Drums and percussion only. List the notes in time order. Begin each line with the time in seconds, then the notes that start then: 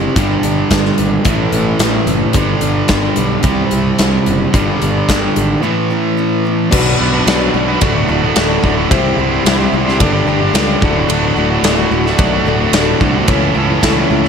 0.16 kick, closed hi-hat
0.43 closed hi-hat
0.71 kick, snare, closed hi-hat
0.85 snare
0.98 closed hi-hat
1.25 kick, closed hi-hat
1.52 closed hi-hat
1.79 snare, closed hi-hat
2.07 closed hi-hat
2.33 kick, closed hi-hat
2.61 closed hi-hat
2.88 kick, snare, closed hi-hat
3.16 closed hi-hat
3.43 kick, closed hi-hat
3.71 closed hi-hat
3.99 snare, closed hi-hat
4.26 closed hi-hat
4.54 kick, closed hi-hat
4.82 closed hi-hat
5.09 kick, snare, closed hi-hat
5.36 closed hi-hat
6.72 kick, crash
7.27 snare, ride bell
7.81 kick, ride bell
8.36 snare, ride bell
8.64 kick
8.91 kick, ride bell
9.46 snare, ride bell
9.88 snare
10.00 kick, ride bell
10.55 snare, ride bell
10.82 kick
11.10 ride bell
11.64 snare, ride bell
12.06 snare
12.19 kick, ride bell
12.73 snare, ride bell
13.01 kick
13.28 kick, ride bell
13.83 kick, snare, ride bell
14.25 snare